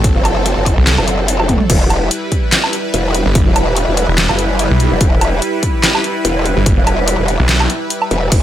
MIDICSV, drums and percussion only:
0, 0, Header, 1, 2, 480
1, 0, Start_track
1, 0, Key_signature, 1, "minor"
1, 0, Tempo, 413793
1, 49, Time_signature, 4, 2, 24, 8
1, 9776, End_track
2, 0, Start_track
2, 0, Title_t, "Drums"
2, 49, Note_on_c, 9, 36, 116
2, 49, Note_on_c, 9, 42, 83
2, 165, Note_off_c, 9, 36, 0
2, 165, Note_off_c, 9, 42, 0
2, 290, Note_on_c, 9, 42, 57
2, 290, Note_on_c, 9, 77, 61
2, 406, Note_off_c, 9, 42, 0
2, 406, Note_off_c, 9, 77, 0
2, 530, Note_on_c, 9, 42, 85
2, 646, Note_off_c, 9, 42, 0
2, 769, Note_on_c, 9, 36, 59
2, 769, Note_on_c, 9, 42, 55
2, 885, Note_off_c, 9, 36, 0
2, 885, Note_off_c, 9, 42, 0
2, 1009, Note_on_c, 9, 38, 115
2, 1009, Note_on_c, 9, 39, 94
2, 1009, Note_on_c, 9, 42, 85
2, 1125, Note_off_c, 9, 38, 0
2, 1125, Note_off_c, 9, 39, 0
2, 1125, Note_off_c, 9, 42, 0
2, 1140, Note_on_c, 9, 77, 60
2, 1248, Note_on_c, 9, 42, 56
2, 1256, Note_off_c, 9, 77, 0
2, 1364, Note_off_c, 9, 42, 0
2, 1488, Note_on_c, 9, 42, 86
2, 1604, Note_off_c, 9, 42, 0
2, 1619, Note_on_c, 9, 48, 51
2, 1619, Note_on_c, 9, 77, 60
2, 1728, Note_on_c, 9, 42, 58
2, 1728, Note_on_c, 9, 47, 79
2, 1729, Note_on_c, 9, 36, 58
2, 1735, Note_off_c, 9, 48, 0
2, 1735, Note_off_c, 9, 77, 0
2, 1844, Note_off_c, 9, 42, 0
2, 1844, Note_off_c, 9, 47, 0
2, 1845, Note_off_c, 9, 36, 0
2, 1860, Note_on_c, 9, 45, 79
2, 1968, Note_on_c, 9, 42, 86
2, 1968, Note_on_c, 9, 49, 78
2, 1969, Note_on_c, 9, 36, 119
2, 1976, Note_off_c, 9, 45, 0
2, 2084, Note_off_c, 9, 42, 0
2, 2084, Note_off_c, 9, 49, 0
2, 2085, Note_off_c, 9, 36, 0
2, 2208, Note_on_c, 9, 42, 55
2, 2208, Note_on_c, 9, 77, 58
2, 2324, Note_off_c, 9, 42, 0
2, 2324, Note_off_c, 9, 77, 0
2, 2448, Note_on_c, 9, 42, 84
2, 2564, Note_off_c, 9, 42, 0
2, 2688, Note_on_c, 9, 42, 55
2, 2689, Note_on_c, 9, 36, 62
2, 2804, Note_off_c, 9, 42, 0
2, 2805, Note_off_c, 9, 36, 0
2, 2928, Note_on_c, 9, 38, 120
2, 2928, Note_on_c, 9, 39, 96
2, 2928, Note_on_c, 9, 42, 83
2, 3044, Note_off_c, 9, 38, 0
2, 3044, Note_off_c, 9, 39, 0
2, 3044, Note_off_c, 9, 42, 0
2, 3059, Note_on_c, 9, 77, 61
2, 3168, Note_on_c, 9, 42, 56
2, 3175, Note_off_c, 9, 77, 0
2, 3284, Note_off_c, 9, 42, 0
2, 3408, Note_on_c, 9, 42, 85
2, 3524, Note_off_c, 9, 42, 0
2, 3648, Note_on_c, 9, 42, 56
2, 3764, Note_off_c, 9, 42, 0
2, 3888, Note_on_c, 9, 42, 81
2, 3889, Note_on_c, 9, 36, 126
2, 4004, Note_off_c, 9, 42, 0
2, 4005, Note_off_c, 9, 36, 0
2, 4128, Note_on_c, 9, 42, 54
2, 4128, Note_on_c, 9, 77, 59
2, 4244, Note_off_c, 9, 42, 0
2, 4244, Note_off_c, 9, 77, 0
2, 4367, Note_on_c, 9, 42, 83
2, 4483, Note_off_c, 9, 42, 0
2, 4608, Note_on_c, 9, 42, 54
2, 4724, Note_off_c, 9, 42, 0
2, 4848, Note_on_c, 9, 38, 122
2, 4848, Note_on_c, 9, 39, 93
2, 4848, Note_on_c, 9, 42, 81
2, 4964, Note_off_c, 9, 38, 0
2, 4964, Note_off_c, 9, 39, 0
2, 4964, Note_off_c, 9, 42, 0
2, 4980, Note_on_c, 9, 77, 59
2, 5088, Note_on_c, 9, 42, 56
2, 5096, Note_off_c, 9, 77, 0
2, 5204, Note_off_c, 9, 42, 0
2, 5327, Note_on_c, 9, 42, 85
2, 5443, Note_off_c, 9, 42, 0
2, 5568, Note_on_c, 9, 42, 56
2, 5684, Note_off_c, 9, 42, 0
2, 5808, Note_on_c, 9, 36, 127
2, 5808, Note_on_c, 9, 42, 81
2, 5924, Note_off_c, 9, 36, 0
2, 5924, Note_off_c, 9, 42, 0
2, 6048, Note_on_c, 9, 42, 53
2, 6048, Note_on_c, 9, 77, 63
2, 6164, Note_off_c, 9, 42, 0
2, 6164, Note_off_c, 9, 77, 0
2, 6288, Note_on_c, 9, 42, 78
2, 6404, Note_off_c, 9, 42, 0
2, 6528, Note_on_c, 9, 36, 66
2, 6528, Note_on_c, 9, 42, 53
2, 6644, Note_off_c, 9, 36, 0
2, 6644, Note_off_c, 9, 42, 0
2, 6768, Note_on_c, 9, 38, 124
2, 6768, Note_on_c, 9, 39, 94
2, 6768, Note_on_c, 9, 42, 78
2, 6884, Note_off_c, 9, 38, 0
2, 6884, Note_off_c, 9, 39, 0
2, 6884, Note_off_c, 9, 42, 0
2, 6900, Note_on_c, 9, 77, 61
2, 7009, Note_on_c, 9, 42, 52
2, 7016, Note_off_c, 9, 77, 0
2, 7125, Note_off_c, 9, 42, 0
2, 7248, Note_on_c, 9, 42, 81
2, 7364, Note_off_c, 9, 42, 0
2, 7488, Note_on_c, 9, 42, 53
2, 7604, Note_off_c, 9, 42, 0
2, 7728, Note_on_c, 9, 42, 76
2, 7729, Note_on_c, 9, 36, 126
2, 7844, Note_off_c, 9, 42, 0
2, 7845, Note_off_c, 9, 36, 0
2, 7968, Note_on_c, 9, 42, 53
2, 7968, Note_on_c, 9, 77, 63
2, 8084, Note_off_c, 9, 42, 0
2, 8084, Note_off_c, 9, 77, 0
2, 8208, Note_on_c, 9, 42, 80
2, 8324, Note_off_c, 9, 42, 0
2, 8447, Note_on_c, 9, 42, 52
2, 8563, Note_off_c, 9, 42, 0
2, 8688, Note_on_c, 9, 38, 126
2, 8688, Note_on_c, 9, 39, 86
2, 8688, Note_on_c, 9, 42, 74
2, 8804, Note_off_c, 9, 38, 0
2, 8804, Note_off_c, 9, 39, 0
2, 8804, Note_off_c, 9, 42, 0
2, 8820, Note_on_c, 9, 77, 63
2, 8929, Note_on_c, 9, 42, 51
2, 8936, Note_off_c, 9, 77, 0
2, 9045, Note_off_c, 9, 42, 0
2, 9168, Note_on_c, 9, 42, 76
2, 9284, Note_off_c, 9, 42, 0
2, 9300, Note_on_c, 9, 77, 62
2, 9409, Note_on_c, 9, 42, 53
2, 9416, Note_off_c, 9, 77, 0
2, 9525, Note_off_c, 9, 42, 0
2, 9648, Note_on_c, 9, 42, 76
2, 9648, Note_on_c, 9, 57, 67
2, 9649, Note_on_c, 9, 36, 123
2, 9764, Note_off_c, 9, 42, 0
2, 9764, Note_off_c, 9, 57, 0
2, 9765, Note_off_c, 9, 36, 0
2, 9776, End_track
0, 0, End_of_file